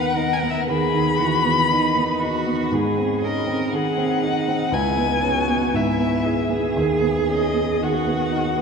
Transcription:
Already playing: grand piano D#2 D#3 B3 C#4, cello B4, violin F#5
0.15 grand piano D#4, cello A#4
0.33 violin G#5
0.41 grand piano B3, violin F#5
0.50 violin E5
0.61 violin F#5
0.68 grand piano D#2, cello G#4, violin B5
0.94 grand piano D#3
1.18 grand piano E3, cello F#4
1.45 grand piano B3
1.68 grand piano D#3, cello D#4
1.97 grand piano B3
2.19 grand piano D#4, cello F#4
2.47 grand piano B3
2.71 grand piano G#2, cello G#4
2.97 grand piano C4
3.22 grand piano C#4, cello A#4, violin D#5
3.47 grand piano C4
3.72 grand piano D#3, cello G#4, violin F#5
3.97 grand piano C4
4.23 grand piano D#4, cello D#4
4.48 grand piano C4
4.72 grand piano C#2, cello E4, violin G#5
4.98 grand piano B3
5.22 grand piano C#4
5.27 cello F#4
5.49 grand piano B3
5.74 grand piano G#2, cello E4, violin E5
5.99 grand piano B3
6.25 grand piano E4, cello G#4
6.50 grand piano B3
6.76 grand piano D#2
7.01 grand piano B3
7.28 grand piano C#4, violin D#5
7.54 grand piano B3
7.81 grand piano D#3, cello F#4, violin F#5
8.07 grand piano B3
8.32 grand piano D#4
8.58 grand piano B3

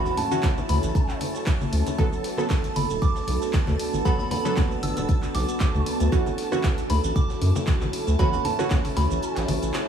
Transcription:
Already playing: synth stab E3 C#4 F#4, ambient pad C#4 E4 F#4 A4, string machine A5
0.05 synth bell B5, snare, low conga, shaker
0.17 synth bell A5, open hi-hat, tambourine, muted conga, low conga
0.31 synth stab E3 C#4 F#4, high conga, shaker
0.43 kick, snare, clap, tambourine, low conga, shaker
0.58 muted conga, shaker
0.69 analog synth bass D2, synth bell B5, open hi-hat, tambourine, high conga
0.83 analog synth bass A1, closed hi-hat, muted conga, shaker
0.95 kick, tambourine, shaker
1.09 clap, shaker
1.21 open hi-hat, tambourine, muted conga, high conga
1.35 snare, shaker
1.46 kick, snare, clap, tambourine, muted conga, shaker
1.61 high conga, shaker
1.73 analog synth bass D2, open hi-hat, tambourine
1.87 closed hi-hat, muted conga, shaker
1.98 synth stab F#3 B3 A4, ambient pad B3 D4 F#4, kick, tambourine, muted conga, high conga, shaker
2.13 shaker
2.24 snare, open hi-hat, tambourine
2.37 synth stab F#3 B3 A4, cross-stick, muted conga, high conga, shaker
2.50 kick, snare, clap, tambourine, shaker
2.64 closed hi-hat, muted conga, shaker
2.76 analog synth bass G1, synth bell B5, open hi-hat, tambourine, high conga
2.90 analog synth bass D1, shaker
3.02 synth bell D6, kick, tambourine, muted conga, shaker
3.16 snare, shaker
3.27 analog synth bass B1, open hi-hat, tambourine, muted conga, high conga
3.42 snare, shaker
3.53 kick, snare, clap, tambourine, shaker
3.67 analog synth bass D2, clap, muted conga, high conga, shaker
3.79 open hi-hat, tambourine
3.93 analog synth bass G1, muted conga, shaker
4.05 synth stab F#3 B3 A4, synth bell B5, kick, tambourine, high conga, shaker
4.19 synth bell B5, snare, low conga, shaker
4.31 synth bell B5, open hi-hat, tambourine, muted conga, low conga
4.45 synth stab F#3 B3 A4, synth bell B5, high conga, shaker
4.57 kick, snare, clap, tambourine, muted conga, low conga, shaker
4.71 shaker
4.83 analog synth bass G1, synth bell E6, open hi-hat, tambourine, high conga
4.97 analog synth bass D1, synth bell E6, closed hi-hat, muted conga, shaker
5.09 kick, tambourine, shaker
5.22 clap, muted conga, shaker
5.35 analog synth bass B1, synth bell D6, snare, open hi-hat, tambourine, high conga
5.49 closed hi-hat, shaker
5.60 kick, snare, clap, tambourine, muted conga, shaker
5.75 analog synth bass D2, high conga, shaker
5.86 ambient pad C#4 E4, open hi-hat, tambourine, muted conga
6.00 analog synth bass D2, closed hi-hat, shaker
6.12 synth stab E3 C#4 F#4, kick, tambourine, high conga, shaker
6.26 muted conga, shaker
6.38 snare, open hi-hat, tambourine
6.52 synth stab E3 C#4 F#4, cross-stick, muted conga, high conga, shaker
6.63 kick, snare, clap, tambourine, shaker
6.78 closed hi-hat, shaker
6.90 analog synth bass D2, synth bell B5, open hi-hat, tambourine, muted conga, high conga
7.04 analog synth bass A1, shaker
7.16 synth bell D6, kick, tambourine, muted conga, shaker
7.30 snare, shaker
7.41 analog synth bass F#2, open hi-hat, tambourine, high conga
7.56 snare, muted conga, shaker
7.67 kick, snare, clap, tambourine, shaker
7.81 analog synth bass A1, clap, muted conga, high conga, shaker
7.93 open hi-hat, tambourine
8.07 analog synth bass D2, shaker
8.19 synth stab E3 C#4 F#4, synth bell B5, kick, tambourine, muted conga, high conga, shaker
8.33 synth bell B5, snare, low conga, shaker
8.44 synth bell A5, open hi-hat, tambourine, muted conga, low conga
8.59 synth stab E3 C#4 F#4, cross-stick, high conga, shaker
8.70 kick, snare, clap, tambourine, low conga, shaker
8.85 open hi-hat, muted conga, shaker
8.97 analog synth bass D2, synth bell B5, snare, open hi-hat, tambourine, high conga
9.10 analog synth bass A1, muted conga, shaker
9.23 tambourine, shaker
9.36 analog synth bass A1, snare, clap, tambourine, shaker
9.48 analog synth bass A1, open hi-hat, muted conga, high conga
9.62 analog synth bass A1, tambourine, shaker
9.74 snare, clap, tambourine, muted conga, shaker

